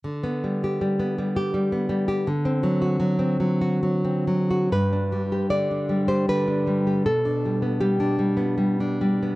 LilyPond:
\new Staff \with { instrumentName = "Nylon-string guitar" } { \time 3/4 \key g \major \tempo 4 = 78 << { r2. | r2. | b'4 d''8. c''16 b'4 | a'4 g'2 | } \\ { d16 b16 g16 g'16 g16 b16 g16 g'16 g16 b16 g16 g'16 | d16 c'16 fis16 fis'16 fis16 c'16 fis16 fis'16 fis16 c'16 fis16 fis'16 | g,16 d'16 g16 g'16 d16 d'16 g16 g'16 d16 d'16 g16 g'16 | b,16 d'16 g16 b16 g16 d'16 g16 b16 g16 d'16 g16 b16 | } >> }